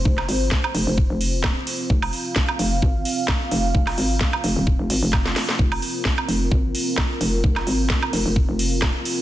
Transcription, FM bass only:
X:1
M:4/4
L:1/16
Q:"Swing 16ths" 1/4=130
K:Fm
V:1 name="FM bass" clef=bass
F,,,2 A,,,2 z2 F,,, F,,,2 F,,,4 z3 | F,,,2 z4 F,,,2 A,,,2 z4 F,,,2 | F,,,2 A,,,2 z2 F,,, E,,,2 F,,, A,,, F,,,3 z2 | F,,,2 z4 F,,,2 A,,,2 z4 F,,,2 |
F,,,2 A,,,2 z2 F,,, F,,,2 F,,,4 z3 |]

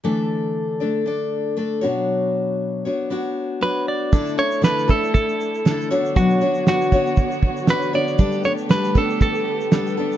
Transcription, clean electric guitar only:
X:1
M:4/4
L:1/8
Q:"Swing 16ths" 1/4=118
K:D
V:1 name="Clean electric guitar"
z8 | z6 B d- | d c B A A4 | F2 F4 B d- |
d c B A A4 |]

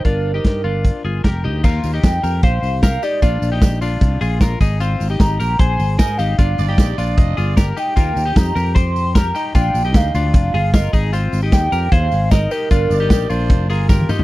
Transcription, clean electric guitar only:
X:1
M:4/4
L:1/16
Q:1/4=152
K:Eb
V:1 name="Clean electric guitar"
[DF]3 [EG]3 [DF]4 [FA]2 [GB]2 [EG]2 | [B,F]3 [EG]3 [GB]2 [Gc]4 [GB]2 [EG]2 | [DF]3 [EG]3 [DF]4 [FA]2 [FB]2 [EA]2 | [CF]3 [EG]3 [GB]2 [Ac]4 [EB]2 [EG]2 |
[DF]3 [EG]3 [DF]4 [FA]2 [GB]2 [EG]2 | [B,F]3 [EG]3 [GB]2 [Gc]4 [GB]2 [EG]2 | [DF]3 [EG]3 [DF]4 [FA]2 [FB]2 [EA]2 | [CF]3 [EG]3 [GB]2 [Ac]4 [EB]2 [EG]2 |
[DF]3 [EG]3 [DF]4 [FA]2 [GB]2 [EG]2 |]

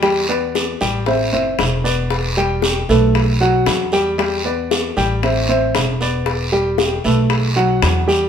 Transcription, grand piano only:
X:1
M:4/4
L:1/8
Q:1/4=115
K:Em
V:1 name="Grand piano"
[G,Gg] [B,Bd]2 [G,Gg] [Cce] [Cce]2 [B,Bd]- | [B,Bd] [G,Gg]2 [A,AB]2 [F,Ff]2 [G,Gg] | [G,Gg] [B,Bd]2 [G,Gg] [Cce] [Cce]2 [B,Bd]- | [B,Bd] [G,Gg]2 [A,AB]2 [F,Ff]2 [G,Gg] |]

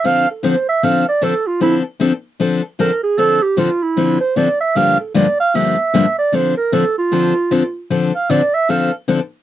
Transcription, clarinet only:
X:1
M:4/4
L:1/8
Q:"Swing" 1/4=153
K:Dm
V:1 name="Clarinet"
f A c e f d A F | E z4 z B ^G | A G F E2 c d e | f A d f e3 d |
c B A F4- F | z f d e f z3 |]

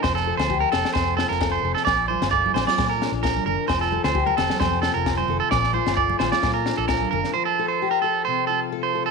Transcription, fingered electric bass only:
X:1
M:4/4
L:1/16
Q:"Swing 16ths" 1/4=131
K:Bb
V:1 name="Fingered electric bass" clef=bass
F,,,3 D,,3 F,,, z F,,3 F,,,3 F,,, z | B,,,3 G,,,3 B,,, z B,,3 B,,,3 _G,,, z | F,,,3 D,,3 F,,, z F,,3 F,,,3 F,,, z | B,,,3 G,,,3 B,,, z B,,3 B,,,3 _G,,, z |
z16 |]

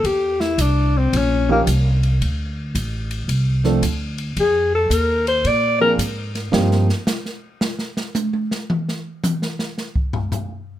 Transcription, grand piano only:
X:1
M:4/4
L:1/8
Q:"Swing" 1/4=111
K:Eblyd
V:1 name="Grand piano"
z4 z [F,B,_DEG] z2 | z4 z [F,A,CDA] z2 | z4 z [F,B,CD_A] z2 | [F,B,CEG] z6 z |
z8 |]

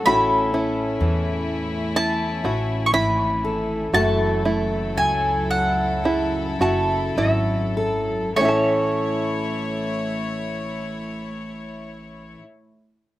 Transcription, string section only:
X:1
M:4/4
L:1/8
Q:1/4=55
K:A
V:1 name="String section"
[A,CE]8 | [F,EA]8 | [A,Ec]8 |]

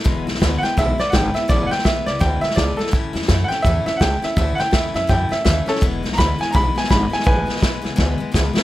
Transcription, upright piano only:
X:1
M:4/4
L:1/8
Q:"Swing" 1/4=166
K:Emix
V:1 name="Upright piano"
z3 [f=g] e d [fg] e | d [f=g] e d g e d A | z3 [f=g] e e [fg] e | e [f=g] e e g e e [CA] |
z2 [^ab] g [ab] g b g | [Bg]6 z2 |]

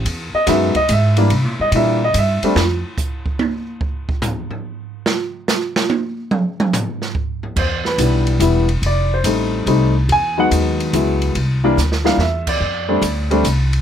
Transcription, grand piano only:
X:1
M:3/4
L:1/16
Q:"Swing" 1/4=144
K:Ephr
V:1 name="Grand piano"
z2 ^d2 e2 d2 e4- | e2 _e2 [e=e]2 _e2 =e3 z | z12 | z12 |
z12 | z12 | c2 B2 z8 | d2 c2 z8 |
^g2 ^f2 z8 | z6 f2 e2 d2- | d8 z4 |]
V:2 name="Grand piano"
z4 [^F,^G,B,^D]2 z4 [E,=G,_B,=D]2 | z4 [E,G,_B,D]2 z4 [G,A,CD]2 | z12 | z12 |
z12 | z12 | z4 [E,G,B,D]4 [E,G,B,E]2 z2 | z4 [G,A,C_E]4 [G,A,CE]2 z2 |
z2 [^F,^G,B,^D]6 [F,G,B,E]4 | z2 [E,G,_B,D]2 z2 [E,G,B,D]2 z4 | z2 [G,A,CD]2 z2 [G,A,CD]2 z4 |]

